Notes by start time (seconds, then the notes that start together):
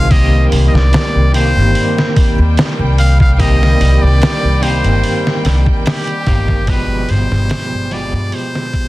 Already playing: C2 F5
0.10 D#3 G3 A#3 C4 G4 D#5 G5, kick, open hi-hat
0.52 C2, open hi-hat
0.68 D#5
0.73 C2 D5, snare
0.93 snare, open hi-hat
1.15 C2
1.33 D#3 A#3 C4 G4 C5, open hi-hat
1.56 G1
1.75 open hi-hat
1.98 snare
2.16 kick, open hi-hat
2.38 D#2
2.57 snare, open hi-hat
2.79 C2
2.98 F5, open hi-hat
3.20 F5, kick
3.34 F5
3.38 D#3 A#3 C4 G4 D#5, kick, open hi-hat
3.63 snare
3.81 C2, open hi-hat
4.02 C2 D5
4.22 snare, open hi-hat
4.43 C2
4.61 D#3 A#3 C4 G4 C5, open hi-hat
4.84 G1, closed hi-hat
5.04 open hi-hat
5.27 snare
5.45 C2, snare, open hi-hat
5.66 kick
5.86 G4, snare, open hi-hat
6.07 closed hi-hat
6.27 G1 D#3 A#3 C4 G4, kick, open hi-hat
6.48 kick
6.66 B2 F3 G#3 G4 B4, kick, open hi-hat
7.09 G1 C5, open hi-hat
7.31 G1, snare
7.49 snare, open hi-hat
7.71 G1
7.91 B2 F3 G#3 G4 D5, open hi-hat
8.13 G2
8.32 C5, open hi-hat
8.55 snare
8.73 kick, open hi-hat